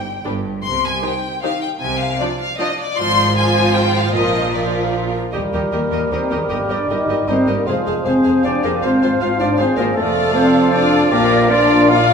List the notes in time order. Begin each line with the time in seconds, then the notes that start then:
Already playing: G5
0.24 G1 G2 G3 D4 G4 B4
0.63 C2 C3 C6
0.84 G#5
1.03 D#3 D#4 G4 C5 G5
1.42 D#3 D#4 G4 C5 F5
1.61 G5
1.80 C2 C3 G#5
2.00 F5
2.20 F3 D4 F4 D5
2.41 F5
2.59 F3 D4 F4 D5 D#5
2.80 D5
2.97 G#1 G#2 F3 F4 C5 C6
3.36 F3 F4 C5 G#5
3.76 G5
3.96 F5
4.14 A#1 A#2 F3 F4 A#4 D#5
4.54 F3 F4 A#4 D5
5.32 D#2 D#3 G3 G4 A#4 D#5
5.53 D#2 D#3 G4 A#4 D#5
5.72 D#2 D#3 A#3 G4 A#4 D#5
5.91 D#2 D#3 G4 A#4 D#5
6.11 D#2 D#3 C4 G4 A#4 C5 D#5
6.30 D#2 D#3 G#3 G4 G#4 A#4 D#5
6.49 G1 G2 A#3 G4 A#4 D#5
6.68 G1 G2 G4 A#4 D5 D#5
6.72 D4
6.89 G1 G2 D#4 G4 A#4 D#5
7.08 G1 G2 G4 A#4 D#5
7.27 G1 G2 C4 D#4 G4 A#4 C5 D#5
7.46 G1 G2 A#3 G4 A#4 D#5
7.66 F1 F2 F3 G#3 F4 G#4 C5 F5
7.86 F1 F2 G#4 C5 F5
8.05 F1 F2 C4 G#4 C5 F5
8.24 F1 F2 G#4 C5 F5
8.43 F1 F2 D4 G4 G#4 C5 D5 F5
8.63 F1 F2 A#3 G#4 A#4 C5 F5
8.82 G#1 G#2 C4 F4 C5 F5
9.01 G#1 G#2 F4 C5 F5
9.20 G#1 G#2 F4 C5 F5
9.24 F4
9.39 G#1 G#2 D4 F4 C5 D5 F5
9.58 G#1 G#2 C4 F4 G#4 C5 F5
9.76 G#1 G#2 A#3 F4 A#4 C5 F5
9.95 F1 F2 F3 A3 F4 A4 D5 F5
10.33 C4 A4 C5
10.71 D4 F4 D5 F5
11.11 A#1 A#2 A#3 F4 G4 A#4 D5 F5
11.50 D4 F4 D5 F5
11.88 F4 D5 F5